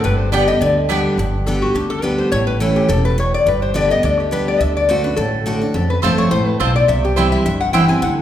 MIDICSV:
0, 0, Header, 1, 5, 480
1, 0, Start_track
1, 0, Key_signature, 1, "major"
1, 0, Tempo, 284765
1, 86, Time_signature, 4, 2, 24, 8
1, 13852, End_track
2, 0, Start_track
2, 0, Title_t, "Resonator guitar played with a steel bar"
2, 0, Program_c, 0, 25
2, 75, Note_on_c, 0, 71, 84
2, 313, Note_off_c, 0, 71, 0
2, 313, Note_on_c, 0, 72, 87
2, 532, Note_off_c, 0, 72, 0
2, 539, Note_on_c, 0, 74, 89
2, 797, Note_off_c, 0, 74, 0
2, 804, Note_on_c, 0, 75, 112
2, 1016, Note_off_c, 0, 75, 0
2, 1022, Note_on_c, 0, 74, 87
2, 1183, Note_off_c, 0, 74, 0
2, 2468, Note_on_c, 0, 69, 72
2, 2725, Note_off_c, 0, 69, 0
2, 2730, Note_on_c, 0, 66, 71
2, 2941, Note_off_c, 0, 66, 0
2, 2947, Note_on_c, 0, 67, 74
2, 3202, Note_on_c, 0, 69, 99
2, 3205, Note_off_c, 0, 67, 0
2, 3430, Note_off_c, 0, 69, 0
2, 3430, Note_on_c, 0, 71, 81
2, 3682, Note_on_c, 0, 72, 78
2, 3686, Note_off_c, 0, 71, 0
2, 3898, Note_off_c, 0, 72, 0
2, 3904, Note_on_c, 0, 73, 104
2, 4153, Note_off_c, 0, 73, 0
2, 4160, Note_on_c, 0, 71, 84
2, 4387, Note_off_c, 0, 71, 0
2, 4404, Note_on_c, 0, 69, 72
2, 4645, Note_off_c, 0, 69, 0
2, 4652, Note_on_c, 0, 67, 80
2, 4863, Note_on_c, 0, 69, 86
2, 4873, Note_off_c, 0, 67, 0
2, 5123, Note_off_c, 0, 69, 0
2, 5140, Note_on_c, 0, 71, 104
2, 5358, Note_off_c, 0, 71, 0
2, 5386, Note_on_c, 0, 73, 84
2, 5625, Note_off_c, 0, 73, 0
2, 5635, Note_on_c, 0, 74, 102
2, 5845, Note_off_c, 0, 74, 0
2, 5870, Note_on_c, 0, 71, 78
2, 6098, Note_off_c, 0, 71, 0
2, 6105, Note_on_c, 0, 72, 90
2, 6320, Note_off_c, 0, 72, 0
2, 6336, Note_on_c, 0, 74, 92
2, 6580, Note_off_c, 0, 74, 0
2, 6593, Note_on_c, 0, 75, 109
2, 6805, Note_off_c, 0, 75, 0
2, 6824, Note_on_c, 0, 74, 80
2, 7065, Note_off_c, 0, 74, 0
2, 7077, Note_on_c, 0, 67, 61
2, 7287, Note_off_c, 0, 67, 0
2, 7287, Note_on_c, 0, 71, 70
2, 7536, Note_off_c, 0, 71, 0
2, 7553, Note_on_c, 0, 74, 84
2, 7770, Note_off_c, 0, 74, 0
2, 7770, Note_on_c, 0, 76, 97
2, 8018, Note_off_c, 0, 76, 0
2, 8034, Note_on_c, 0, 74, 90
2, 8237, Note_on_c, 0, 72, 75
2, 8246, Note_off_c, 0, 74, 0
2, 8488, Note_off_c, 0, 72, 0
2, 8495, Note_on_c, 0, 71, 86
2, 8698, Note_off_c, 0, 71, 0
2, 8705, Note_on_c, 0, 69, 94
2, 9162, Note_off_c, 0, 69, 0
2, 9700, Note_on_c, 0, 69, 73
2, 9943, Note_off_c, 0, 69, 0
2, 9944, Note_on_c, 0, 71, 79
2, 10139, Note_off_c, 0, 71, 0
2, 10145, Note_on_c, 0, 72, 81
2, 10406, Note_off_c, 0, 72, 0
2, 10420, Note_on_c, 0, 73, 102
2, 10632, Note_off_c, 0, 73, 0
2, 10638, Note_on_c, 0, 72, 96
2, 10896, Note_off_c, 0, 72, 0
2, 10896, Note_on_c, 0, 71, 95
2, 11117, Note_off_c, 0, 71, 0
2, 11125, Note_on_c, 0, 72, 85
2, 11375, Note_off_c, 0, 72, 0
2, 11390, Note_on_c, 0, 74, 100
2, 11593, Note_off_c, 0, 74, 0
2, 11600, Note_on_c, 0, 76, 99
2, 11853, Note_off_c, 0, 76, 0
2, 11876, Note_on_c, 0, 67, 75
2, 12071, Note_on_c, 0, 72, 77
2, 12087, Note_off_c, 0, 67, 0
2, 12328, Note_off_c, 0, 72, 0
2, 12338, Note_on_c, 0, 76, 110
2, 12547, Note_off_c, 0, 76, 0
2, 12567, Note_on_c, 0, 76, 95
2, 12813, Note_off_c, 0, 76, 0
2, 12819, Note_on_c, 0, 78, 104
2, 13024, Note_off_c, 0, 78, 0
2, 13031, Note_on_c, 0, 79, 84
2, 13287, Note_off_c, 0, 79, 0
2, 13299, Note_on_c, 0, 80, 104
2, 13517, Note_off_c, 0, 80, 0
2, 13524, Note_on_c, 0, 78, 98
2, 13852, Note_off_c, 0, 78, 0
2, 13852, End_track
3, 0, Start_track
3, 0, Title_t, "Mandolin"
3, 0, Program_c, 1, 25
3, 541, Note_on_c, 1, 59, 85
3, 550, Note_on_c, 1, 67, 79
3, 558, Note_on_c, 1, 74, 84
3, 562, Note_on_c, 1, 79, 100
3, 716, Note_off_c, 1, 59, 0
3, 721, Note_off_c, 1, 67, 0
3, 725, Note_off_c, 1, 74, 0
3, 727, Note_off_c, 1, 79, 0
3, 1496, Note_on_c, 1, 59, 89
3, 1500, Note_on_c, 1, 67, 85
3, 1508, Note_on_c, 1, 74, 96
3, 1510, Note_on_c, 1, 79, 102
3, 1674, Note_off_c, 1, 59, 0
3, 1676, Note_off_c, 1, 67, 0
3, 1679, Note_off_c, 1, 74, 0
3, 1680, Note_off_c, 1, 79, 0
3, 10152, Note_on_c, 1, 60, 81
3, 10160, Note_on_c, 1, 65, 92
3, 10164, Note_on_c, 1, 72, 100
3, 10172, Note_on_c, 1, 81, 97
3, 10323, Note_off_c, 1, 60, 0
3, 10328, Note_off_c, 1, 65, 0
3, 10330, Note_off_c, 1, 72, 0
3, 10333, Note_off_c, 1, 81, 0
3, 11119, Note_on_c, 1, 60, 90
3, 11127, Note_on_c, 1, 65, 96
3, 11132, Note_on_c, 1, 72, 94
3, 11137, Note_on_c, 1, 81, 88
3, 11287, Note_off_c, 1, 60, 0
3, 11291, Note_off_c, 1, 65, 0
3, 11293, Note_off_c, 1, 72, 0
3, 11296, Note_off_c, 1, 81, 0
3, 12077, Note_on_c, 1, 60, 93
3, 12081, Note_on_c, 1, 64, 96
3, 12087, Note_on_c, 1, 72, 93
3, 12092, Note_on_c, 1, 79, 95
3, 12246, Note_off_c, 1, 60, 0
3, 12248, Note_off_c, 1, 64, 0
3, 12251, Note_off_c, 1, 72, 0
3, 12253, Note_off_c, 1, 79, 0
3, 13041, Note_on_c, 1, 60, 96
3, 13047, Note_on_c, 1, 64, 88
3, 13048, Note_on_c, 1, 72, 103
3, 13054, Note_on_c, 1, 79, 90
3, 13207, Note_off_c, 1, 60, 0
3, 13210, Note_off_c, 1, 64, 0
3, 13211, Note_off_c, 1, 72, 0
3, 13214, Note_off_c, 1, 79, 0
3, 13852, End_track
4, 0, Start_track
4, 0, Title_t, "Steel-string acoustic guitar"
4, 0, Program_c, 2, 25
4, 65, Note_on_c, 2, 43, 97
4, 541, Note_on_c, 2, 50, 89
4, 551, Note_on_c, 2, 55, 97
4, 565, Note_on_c, 2, 59, 101
4, 569, Note_on_c, 2, 67, 103
4, 794, Note_off_c, 2, 67, 0
4, 799, Note_off_c, 2, 50, 0
4, 805, Note_off_c, 2, 55, 0
4, 811, Note_off_c, 2, 59, 0
4, 814, Note_on_c, 2, 67, 63
4, 843, Note_on_c, 2, 59, 51
4, 990, Note_off_c, 2, 43, 0
4, 1032, Note_off_c, 2, 67, 0
4, 1039, Note_on_c, 2, 50, 97
4, 1047, Note_off_c, 2, 59, 0
4, 1492, Note_off_c, 2, 50, 0
4, 1512, Note_on_c, 2, 50, 91
4, 1520, Note_on_c, 2, 55, 87
4, 1533, Note_on_c, 2, 59, 92
4, 1543, Note_on_c, 2, 67, 98
4, 1976, Note_off_c, 2, 50, 0
4, 1980, Note_off_c, 2, 55, 0
4, 1986, Note_off_c, 2, 59, 0
4, 1991, Note_off_c, 2, 67, 0
4, 2009, Note_on_c, 2, 43, 102
4, 2477, Note_on_c, 2, 50, 86
4, 2486, Note_on_c, 2, 55, 92
4, 2498, Note_on_c, 2, 59, 92
4, 2500, Note_on_c, 2, 67, 96
4, 2922, Note_off_c, 2, 43, 0
4, 2938, Note_off_c, 2, 50, 0
4, 2943, Note_off_c, 2, 55, 0
4, 2949, Note_off_c, 2, 59, 0
4, 2950, Note_off_c, 2, 67, 0
4, 2959, Note_on_c, 2, 50, 90
4, 3391, Note_off_c, 2, 50, 0
4, 3412, Note_on_c, 2, 50, 84
4, 3423, Note_on_c, 2, 55, 86
4, 3433, Note_on_c, 2, 59, 90
4, 3437, Note_on_c, 2, 67, 90
4, 3886, Note_off_c, 2, 50, 0
4, 3892, Note_off_c, 2, 55, 0
4, 3897, Note_off_c, 2, 59, 0
4, 3899, Note_off_c, 2, 67, 0
4, 3915, Note_on_c, 2, 45, 92
4, 4388, Note_on_c, 2, 52, 96
4, 4399, Note_on_c, 2, 57, 93
4, 4413, Note_on_c, 2, 61, 97
4, 4416, Note_on_c, 2, 64, 97
4, 4836, Note_off_c, 2, 45, 0
4, 4854, Note_off_c, 2, 52, 0
4, 4860, Note_off_c, 2, 57, 0
4, 4866, Note_off_c, 2, 61, 0
4, 4868, Note_off_c, 2, 64, 0
4, 4880, Note_on_c, 2, 47, 101
4, 5340, Note_off_c, 2, 47, 0
4, 5358, Note_on_c, 2, 45, 89
4, 5820, Note_off_c, 2, 45, 0
4, 5843, Note_on_c, 2, 43, 94
4, 6305, Note_on_c, 2, 50, 95
4, 6320, Note_on_c, 2, 55, 95
4, 6330, Note_on_c, 2, 59, 106
4, 6334, Note_on_c, 2, 67, 102
4, 6560, Note_off_c, 2, 67, 0
4, 6562, Note_off_c, 2, 50, 0
4, 6570, Note_off_c, 2, 55, 0
4, 6574, Note_off_c, 2, 59, 0
4, 6580, Note_on_c, 2, 67, 61
4, 6601, Note_on_c, 2, 59, 52
4, 6760, Note_off_c, 2, 43, 0
4, 6794, Note_on_c, 2, 50, 94
4, 6796, Note_off_c, 2, 67, 0
4, 6806, Note_off_c, 2, 59, 0
4, 7247, Note_off_c, 2, 50, 0
4, 7267, Note_on_c, 2, 50, 75
4, 7285, Note_on_c, 2, 55, 98
4, 7293, Note_on_c, 2, 59, 94
4, 7299, Note_on_c, 2, 67, 90
4, 7735, Note_off_c, 2, 50, 0
4, 7744, Note_off_c, 2, 55, 0
4, 7748, Note_off_c, 2, 59, 0
4, 7751, Note_off_c, 2, 67, 0
4, 7764, Note_on_c, 2, 50, 91
4, 8218, Note_off_c, 2, 50, 0
4, 8238, Note_on_c, 2, 50, 103
4, 8248, Note_on_c, 2, 57, 87
4, 8259, Note_on_c, 2, 62, 94
4, 8273, Note_on_c, 2, 66, 98
4, 8477, Note_off_c, 2, 66, 0
4, 8489, Note_off_c, 2, 50, 0
4, 8494, Note_off_c, 2, 57, 0
4, 8497, Note_on_c, 2, 66, 65
4, 8500, Note_off_c, 2, 62, 0
4, 8531, Note_on_c, 2, 62, 51
4, 8715, Note_off_c, 2, 66, 0
4, 8719, Note_on_c, 2, 45, 90
4, 8732, Note_off_c, 2, 62, 0
4, 9199, Note_on_c, 2, 50, 84
4, 9211, Note_on_c, 2, 57, 91
4, 9214, Note_on_c, 2, 62, 90
4, 9229, Note_on_c, 2, 66, 100
4, 9444, Note_off_c, 2, 66, 0
4, 9450, Note_off_c, 2, 50, 0
4, 9456, Note_off_c, 2, 57, 0
4, 9457, Note_off_c, 2, 62, 0
4, 9464, Note_on_c, 2, 66, 67
4, 9489, Note_on_c, 2, 62, 48
4, 9639, Note_off_c, 2, 45, 0
4, 9679, Note_off_c, 2, 66, 0
4, 9679, Note_on_c, 2, 41, 94
4, 9691, Note_off_c, 2, 62, 0
4, 10162, Note_on_c, 2, 53, 85
4, 10181, Note_on_c, 2, 57, 96
4, 10189, Note_on_c, 2, 60, 98
4, 10190, Note_on_c, 2, 65, 106
4, 10599, Note_off_c, 2, 41, 0
4, 10623, Note_off_c, 2, 53, 0
4, 10632, Note_off_c, 2, 57, 0
4, 10636, Note_off_c, 2, 60, 0
4, 10636, Note_off_c, 2, 65, 0
4, 10637, Note_on_c, 2, 45, 97
4, 11101, Note_off_c, 2, 45, 0
4, 11132, Note_on_c, 2, 47, 86
4, 11588, Note_off_c, 2, 47, 0
4, 11614, Note_on_c, 2, 48, 92
4, 12085, Note_on_c, 2, 52, 86
4, 12099, Note_on_c, 2, 55, 97
4, 12109, Note_on_c, 2, 60, 94
4, 12116, Note_on_c, 2, 64, 90
4, 12526, Note_off_c, 2, 48, 0
4, 12544, Note_off_c, 2, 52, 0
4, 12551, Note_off_c, 2, 55, 0
4, 12556, Note_off_c, 2, 60, 0
4, 12559, Note_off_c, 2, 64, 0
4, 12571, Note_on_c, 2, 43, 96
4, 13033, Note_on_c, 2, 52, 98
4, 13039, Note_on_c, 2, 55, 92
4, 13052, Note_on_c, 2, 60, 90
4, 13059, Note_on_c, 2, 64, 108
4, 13268, Note_off_c, 2, 64, 0
4, 13286, Note_off_c, 2, 52, 0
4, 13289, Note_off_c, 2, 55, 0
4, 13289, Note_on_c, 2, 64, 60
4, 13296, Note_off_c, 2, 60, 0
4, 13318, Note_on_c, 2, 60, 51
4, 13484, Note_off_c, 2, 43, 0
4, 13510, Note_off_c, 2, 64, 0
4, 13520, Note_on_c, 2, 50, 94
4, 13525, Note_off_c, 2, 60, 0
4, 13852, Note_off_c, 2, 50, 0
4, 13852, End_track
5, 0, Start_track
5, 0, Title_t, "Upright bass"
5, 0, Program_c, 3, 32
5, 78, Note_on_c, 3, 31, 89
5, 835, Note_off_c, 3, 31, 0
5, 1033, Note_on_c, 3, 38, 84
5, 1792, Note_off_c, 3, 38, 0
5, 1982, Note_on_c, 3, 31, 101
5, 2745, Note_off_c, 3, 31, 0
5, 2943, Note_on_c, 3, 38, 86
5, 3707, Note_off_c, 3, 38, 0
5, 3914, Note_on_c, 3, 33, 94
5, 4673, Note_off_c, 3, 33, 0
5, 4872, Note_on_c, 3, 28, 90
5, 5632, Note_off_c, 3, 28, 0
5, 5832, Note_on_c, 3, 31, 98
5, 6593, Note_off_c, 3, 31, 0
5, 6800, Note_on_c, 3, 38, 95
5, 7558, Note_off_c, 3, 38, 0
5, 7758, Note_on_c, 3, 38, 89
5, 8517, Note_off_c, 3, 38, 0
5, 8721, Note_on_c, 3, 33, 90
5, 9479, Note_off_c, 3, 33, 0
5, 9680, Note_on_c, 3, 41, 91
5, 10061, Note_off_c, 3, 41, 0
5, 10166, Note_on_c, 3, 31, 88
5, 10575, Note_off_c, 3, 31, 0
5, 10648, Note_on_c, 3, 33, 84
5, 11056, Note_off_c, 3, 33, 0
5, 11130, Note_on_c, 3, 35, 91
5, 11537, Note_off_c, 3, 35, 0
5, 11613, Note_on_c, 3, 36, 91
5, 12365, Note_off_c, 3, 36, 0
5, 12563, Note_on_c, 3, 31, 96
5, 13319, Note_off_c, 3, 31, 0
5, 13525, Note_on_c, 3, 38, 91
5, 13852, Note_off_c, 3, 38, 0
5, 13852, End_track
0, 0, End_of_file